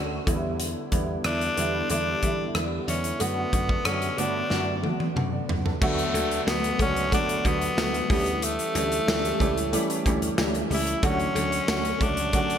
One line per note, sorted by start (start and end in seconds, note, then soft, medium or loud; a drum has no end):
0.00 0.18 D2 medium
0.00 0.26 D3 loud
0.00 0.29 A3 loud
0.00 0.29 C#4 loud
0.00 0.29 F#4 loud
0.26 0.74 E2 medium
0.26 0.79 D3 medium
0.26 0.79 G3 medium
0.26 0.79 B3 medium
0.26 0.79 E4 medium
0.26 kick loud
0.26 closed hi-hat medium
0.60 closed hi-hat medium
0.91 1.16 E2 medium
0.91 1.11 D3 medium
0.91 1.12 G3 medium
0.91 1.12 B3 medium
0.91 1.12 E4 medium
0.91 kick medium
0.91 closed hi-hat medium
1.24 1.48 E2 loud
1.24 1.44 D3 medium
1.24 1.44 G3 medium
1.24 1.45 B3 medium
1.24 1.87 D4 loud
1.24 1.45 E4 medium
1.24 cross-stick loud
1.24 closed hi-hat medium
1.41 closed hi-hat soft
1.57 1.81 E2 medium
1.57 1.77 D3 medium
1.57 1.77 G3 medium
1.57 1.77 B3 medium
1.57 1.77 E4 loud
1.57 closed hi-hat medium
1.89 2.13 E2 loud
1.89 2.09 D3 medium
1.89 2.10 G3 medium
1.89 2.10 B3 medium
1.89 2.52 D4 loud
1.89 2.10 E4 medium
1.89 closed hi-hat medium
2.22 2.42 D3 medium
2.22 2.46 E3 medium
2.22 2.42 G3 medium
2.22 2.42 B3 medium
2.22 2.43 E4 medium
2.22 kick medium
2.22 closed hi-hat medium
2.54 2.78 E2 medium
2.54 2.74 D3 medium
2.54 2.75 G3 medium
2.54 2.75 B3 medium
2.54 2.75 E4 medium
2.54 cross-stick loud
2.54 closed hi-hat medium
2.87 3.11 E2 medium
2.87 3.07 D3 medium
2.87 3.07 G3 medium
2.87 3.07 B3 medium
2.87 3.22 C#4 medium
2.87 3.08 E4 medium
2.87 closed hi-hat medium
3.04 closed hi-hat soft
3.19 3.44 F#2 loud
3.19 3.40 D3 medium
3.19 3.40 A3 medium
3.19 3.86 B3 medium
3.19 3.40 B3 medium
3.19 3.40 F#4 loud
3.19 closed hi-hat medium
3.53 3.77 F#2 medium
3.53 3.72 D3 medium
3.53 3.73 A3 medium
3.53 3.73 B3 medium
3.53 3.73 F#4 medium
3.53 kick medium
3.53 closed hi-hat medium
3.69 kick medium
3.85 4.09 F#2 medium
3.85 4.05 D3 medium
3.85 4.05 A3 medium
3.85 4.05 B3 medium
3.85 4.20 C#4 loud
3.85 4.06 F#4 medium
3.85 cross-stick loud
3.85 closed hi-hat medium
4.02 closed hi-hat soft
4.17 4.42 G2 medium
4.17 4.37 D3 medium
4.17 4.38 A3 medium
4.17 4.38 B3 medium
4.17 4.83 D4 medium
4.17 4.38 F#4 loud
4.17 closed hi-hat medium
4.50 4.85 F#2 medium
4.50 4.70 D3 medium
4.50 4.70 A3 medium
4.50 4.71 B3 medium
4.50 4.71 F#4 medium
4.50 snare medium
4.83 5.03 D3 medium
4.83 5.07 F#3 medium
4.83 5.03 A3 medium
4.83 5.03 B3 medium
4.83 5.03 F#4 medium
4.83 high tom medium
5.00 high tom medium
5.16 5.40 F#2 medium
5.16 5.32 F#5 medium
5.16 mid tom medium
5.32 5.48 D5 medium
5.48 5.72 F#2 medium
5.48 5.64 B4 medium
5.48 floor tom medium
5.65 5.96 A4 medium
5.65 floor tom medium
5.81 6.05 D2 loud
5.81 6.01 D3 medium
5.81 6.01 F#3 medium
5.81 6.01 A3 medium
5.81 6.43 A3 loud
5.81 6.01 B3 medium
5.81 6.01 F#4 loud
5.81 kick loud
5.81 crash loud
5.99 closed hi-hat soft
6.14 6.37 D2 loud
6.14 6.33 D3 medium
6.14 6.34 F#3 medium
6.14 6.34 A3 medium
6.14 6.34 B3 medium
6.14 6.34 F#4 medium
6.14 closed hi-hat medium
6.31 closed hi-hat soft
6.46 6.70 D2 loud
6.46 6.66 D3 medium
6.46 6.66 F#3 medium
6.46 6.66 A3 medium
6.46 6.67 B3 medium
6.46 6.78 B3 loud
6.46 6.67 F#4 medium
6.46 snare loud
6.46 tambourine medium
6.64 closed hi-hat medium
6.79 7.15 C#2 loud
6.79 6.99 D3 medium
6.79 6.99 F#3 medium
6.79 6.99 A3 medium
6.79 6.99 B3 medium
6.79 7.11 C#4 loud
6.79 6.99 F#4 medium
6.79 kick loud
6.79 closed hi-hat medium
6.96 closed hi-hat medium
7.11 7.31 D3 medium
7.11 7.31 F#3 medium
7.11 7.32 A3 medium
7.11 7.32 B3 medium
7.11 7.49 D4 loud
7.11 7.32 F#4 loud
7.11 kick medium
7.11 closed hi-hat medium
7.29 closed hi-hat soft
7.44 7.68 D2 loud
7.44 7.64 D3 medium
7.44 7.64 F#3 medium
7.44 7.64 A3 medium
7.44 7.64 B3 medium
7.44 8.11 B3 loud
7.44 7.65 F#4 medium
7.44 kick medium
7.44 closed hi-hat medium
7.62 closed hi-hat medium
7.77 8.01 D2 loud
7.77 7.97 D3 medium
7.77 7.97 F#3 medium
7.77 7.97 A3 medium
7.77 7.97 B3 medium
7.77 7.97 F#4 medium
7.77 snare loud
7.77 tambourine medium
7.94 closed hi-hat soft
8.09 8.57 D2 loud
8.09 8.62 E3 medium
8.09 8.62 G3 medium
8.09 8.62 A3 medium
8.09 8.46 B3 medium
8.09 8.62 C#4 medium
8.09 8.62 G4 medium
8.09 kick loud
8.09 open hi-hat medium
8.26 closed hi-hat medium
8.42 10.39 A3 loud
8.42 closed hi-hat loud
8.59 closed hi-hat soft
8.75 8.98 D2 loud
8.75 8.94 E3 medium
8.75 8.95 G3 medium
8.75 8.95 A3 medium
8.75 8.95 C#4 medium
8.75 8.95 G4 medium
8.75 closed hi-hat medium
8.92 closed hi-hat soft
9.07 9.31 D2 loud
9.07 9.27 E3 medium
9.07 9.27 G3 medium
9.07 9.27 A3 medium
9.07 9.27 C#4 medium
9.07 9.27 G4 medium
9.07 snare loud
9.07 tambourine medium
9.25 closed hi-hat medium
9.40 9.75 C#2 medium
9.40 9.60 E3 loud
9.40 9.60 G3 medium
9.40 9.60 A3 medium
9.40 9.60 C#4 medium
9.40 9.60 G4 loud
9.40 kick medium
9.40 closed hi-hat medium
9.58 closed hi-hat medium
9.72 9.92 E3 loud
9.72 9.92 G3 loud
9.72 9.92 A3 loud
9.72 9.92 C#4 loud
9.72 9.93 G4 loud
9.72 closed hi-hat medium
9.90 closed hi-hat soft
10.05 10.29 D2 medium
10.05 10.25 E3 medium
10.05 10.25 G3 medium
10.05 10.25 A3 medium
10.05 10.25 C#4 medium
10.05 10.25 G4 loud
10.05 kick medium
10.05 closed hi-hat medium
10.22 closed hi-hat medium
10.37 10.62 D2 medium
10.37 10.57 E3 medium
10.37 10.58 G3 medium
10.37 10.58 A3 medium
10.37 10.58 C#4 medium
10.37 10.58 G4 medium
10.37 snare loud
10.37 tambourine medium
10.55 closed hi-hat soft
10.70 10.94 C#2 medium
10.70 10.90 E3 medium
10.70 10.90 G3 medium
10.70 10.90 A3 medium
10.70 10.90 C#4 medium
10.70 10.90 G4 medium
10.70 open hi-hat medium
10.74 11.08 E4 medium
10.87 closed hi-hat medium
11.03 11.27 D2 loud
11.03 11.22 D3 loud
11.03 11.23 F#3 medium
11.03 11.23 A3 medium
11.03 11.23 C#4 medium
11.03 12.04 C#4 loud
11.03 11.23 F#4 loud
11.03 kick loud
11.03 closed hi-hat loud
11.20 closed hi-hat soft
11.35 11.59 D2 loud
11.35 11.55 D3 medium
11.35 11.55 F#3 medium
11.35 11.55 A3 medium
11.35 11.55 C#4 medium
11.35 11.56 F#4 medium
11.35 closed hi-hat medium
11.52 closed hi-hat soft
11.68 11.92 D2 medium
11.68 11.88 D3 medium
11.68 11.88 F#3 medium
11.68 11.88 A3 medium
11.68 11.88 C#4 medium
11.68 11.88 F#4 medium
11.68 snare loud
11.68 tambourine medium
11.85 closed hi-hat medium
12.00 12.36 C#2 medium
12.00 12.20 D3 medium
12.00 12.20 F#3 medium
12.00 12.21 A3 medium
12.00 12.21 C#4 medium
12.00 12.58 D4 loud
12.00 12.21 F#4 medium
12.00 kick loud
12.00 closed hi-hat medium
12.17 closed hi-hat medium
12.33 12.53 D3 loud
12.33 12.53 F#3 medium
12.33 12.53 A3 medium
12.33 12.53 C#4 medium
12.33 12.53 F#4 loud
12.33 kick loud
12.33 closed hi-hat medium
12.50 closed hi-hat soft